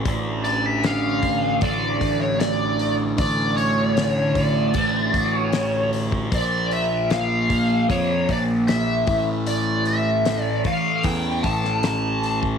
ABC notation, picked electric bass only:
X:1
M:4/4
L:1/8
Q:1/4=76
K:none
V:1 name="Picked electric bass" clef=bass
A,,,4 A,,, A,,,3 | A,,,4 A,,, A,,,3 | _B,,,4 F,, B,,,2 A,,,- | A,,,3 z E,, A,,,3 |]